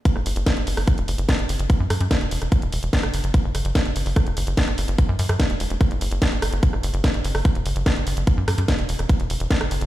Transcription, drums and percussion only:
0.05 kick, closed hi-hat
0.16 cross-stick
0.26 open hi-hat
0.36 closed hi-hat
0.46 kick, snare, closed hi-hat
0.57 closed hi-hat
0.67 open hi-hat
0.77 cross-stick, open hi-hat
0.88 kick, closed hi-hat
0.98 closed hi-hat
1.08 open hi-hat
1.18 closed hi-hat
1.29 kick, cross-stick, snare, closed hi-hat
1.39 closed hi-hat
1.49 open hi-hat
1.59 closed hi-hat
1.70 kick, closed hi-hat
1.90 cross-stick, open hi-hat
2.01 closed hi-hat
2.11 kick, snare, closed hi-hat
2.21 closed hi-hat
2.31 open hi-hat
2.42 cross-stick, closed hi-hat
2.52 kick, closed hi-hat
2.62 closed hi-hat
2.72 open hi-hat
2.83 closed hi-hat
2.93 kick, snare, closed hi-hat
3.03 cross-stick, closed hi-hat
3.14 open hi-hat
3.24 closed hi-hat
3.34 kick, closed hi-hat
3.55 cross-stick, open hi-hat
3.65 closed hi-hat
3.75 kick, snare, closed hi-hat
3.85 closed hi-hat
3.96 open hi-hat
4.06 open hi-hat
4.16 kick, cross-stick, closed hi-hat
4.27 closed hi-hat
4.37 open hi-hat
4.47 closed hi-hat
4.57 kick, snare, closed hi-hat
4.68 cross-stick, closed hi-hat
4.78 open hi-hat
4.88 closed hi-hat
4.98 kick, closed hi-hat
5.19 open hi-hat
5.29 cross-stick, closed hi-hat
5.40 kick, snare, closed hi-hat
5.50 closed hi-hat
5.60 open hi-hat
5.70 closed hi-hat
5.81 kick, cross-stick, closed hi-hat
5.91 closed hi-hat
6.01 open hi-hat
6.11 closed hi-hat
6.22 kick, snare, closed hi-hat
6.32 closed hi-hat
6.42 cross-stick, open hi-hat
6.53 closed hi-hat
6.63 kick, closed hi-hat
6.73 cross-stick
6.83 open hi-hat
6.94 closed hi-hat
7.04 kick, snare, closed hi-hat
7.14 closed hi-hat
7.25 open hi-hat
7.35 cross-stick, open hi-hat
7.45 kick, closed hi-hat
7.55 closed hi-hat
7.66 open hi-hat
7.76 closed hi-hat
7.86 kick, cross-stick, snare, closed hi-hat
7.96 closed hi-hat
8.07 open hi-hat
8.17 closed hi-hat
8.27 kick, closed hi-hat
8.48 cross-stick, open hi-hat
8.58 closed hi-hat
8.68 kick, snare, closed hi-hat
8.79 closed hi-hat
8.89 open hi-hat
8.99 cross-stick, closed hi-hat
9.09 kick, closed hi-hat
9.20 closed hi-hat
9.30 open hi-hat
9.40 closed hi-hat
9.51 kick, snare, closed hi-hat
9.61 cross-stick, closed hi-hat
9.71 open hi-hat
9.81 closed hi-hat

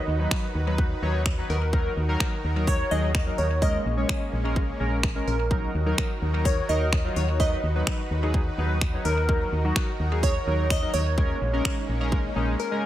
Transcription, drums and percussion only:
0.31 finger snap, kick
0.78 kick
1.26 finger snap, kick
1.73 kick
2.20 finger snap, kick
2.67 kick
3.15 finger snap, kick
3.62 kick
4.09 finger snap, kick
4.56 kick
5.03 finger snap, kick
5.51 kick
5.98 finger snap, kick
6.45 kick
6.93 finger snap, kick
7.40 kick
7.87 finger snap, kick
8.34 kick
8.81 finger snap, kick
9.29 kick
9.76 finger snap, kick
10.23 kick
10.70 finger snap, kick
11.18 kick
11.65 finger snap, kick
12.12 kick

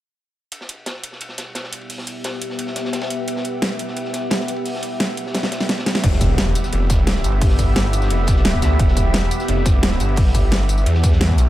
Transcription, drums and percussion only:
0.52 closed hi-hat, ride
0.61 snare
0.69 closed hi-hat, ride
0.86 snare, closed hi-hat, ride
1.03 closed hi-hat, ride
1.12 snare
1.21 closed hi-hat, ride
1.29 snare
1.38 snare, closed hi-hat, ride
1.55 snare, closed hi-hat, ride
1.64 snare
1.73 closed hi-hat, ride
1.81 ride
1.90 closed hi-hat, open hi-hat
1.98 snare
2.07 closed hi-hat, ride
2.24 snare, closed hi-hat, ride
2.42 closed hi-hat, ride
2.50 snare
2.59 closed hi-hat, ride
2.67 snare
2.76 snare, closed hi-hat, ride
2.85 snare
2.93 snare, closed hi-hat, ride
3.01 snare, ride
3.10 closed hi-hat, ride
3.28 closed hi-hat, ride
3.36 snare
3.44 closed hi-hat, ride
3.62 snare, closed hi-hat, ride
3.79 closed hi-hat, ride
3.88 snare
3.97 closed hi-hat, ride
4.05 snare
4.13 snare, closed hi-hat, ride
4.31 snare, closed hi-hat, ride
4.40 snare
4.48 closed hi-hat, ride
4.56 ride
4.65 closed hi-hat, open hi-hat
4.75 snare
4.82 closed hi-hat, ride
5.00 snare, closed hi-hat, ride
5.17 closed hi-hat, ride
5.26 snare
5.34 snare, closed hi-hat, ride
5.43 snare, ride
5.52 snare, closed hi-hat, ride
5.60 snare
5.69 snare, closed hi-hat, ride
5.78 snare, ride
5.86 snare, closed hi-hat, ride
5.95 snare, ride
6.04 kick, closed hi-hat, crash, ride
6.13 snare
6.21 kick, closed hi-hat, ride, tambourine
6.38 snare, closed hi-hat, ride
6.55 closed hi-hat, ride, tambourine
6.64 snare, tambourine
6.72 closed hi-hat, ride
6.90 kick, snare, closed hi-hat, ride, tambourine
7.07 snare, closed hi-hat, ride
7.16 snare
7.24 closed hi-hat, ride, tambourine
7.32 ride
7.41 kick, closed hi-hat, open hi-hat
7.50 snare
7.59 kick, closed hi-hat, ride, tambourine
7.76 snare, closed hi-hat, ride
7.93 closed hi-hat, ride, tambourine
8.02 snare, tambourine
8.10 closed hi-hat, ride
8.27 kick, snare, closed hi-hat, ride, tambourine
8.36 snare
8.45 snare, closed hi-hat, ride
8.54 kick
8.62 snare, closed hi-hat, ride, tambourine
8.79 kick, closed hi-hat, ride
8.88 snare
8.97 kick, closed hi-hat, ride, tambourine
9.14 snare, closed hi-hat, ride
9.31 closed hi-hat, ride, tambourine
9.40 snare, tambourine
9.48 closed hi-hat, ride
9.65 kick, snare, closed hi-hat, ride, tambourine
9.83 snare, closed hi-hat, ride
9.91 snare
10.00 closed hi-hat, ride, tambourine
10.09 ride
10.16 kick, closed hi-hat, open hi-hat
10.27 snare
10.34 kick, closed hi-hat, ride, tambourine
10.52 snare, closed hi-hat, ride
10.69 closed hi-hat, ride, tambourine
10.78 tambourine
10.86 closed hi-hat, ride
10.94 snare
11.03 kick, snare, closed hi-hat, ride, tambourine
11.12 snare
11.21 snare, closed hi-hat, ride
11.29 kick, snare
11.38 closed hi-hat, ride, tambourine

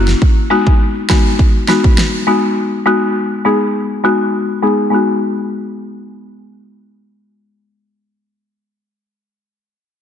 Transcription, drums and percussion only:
0.08 snare
0.22 kick
0.67 kick
1.10 kick, snare
1.39 kick
1.68 snare
1.84 kick
1.98 snare

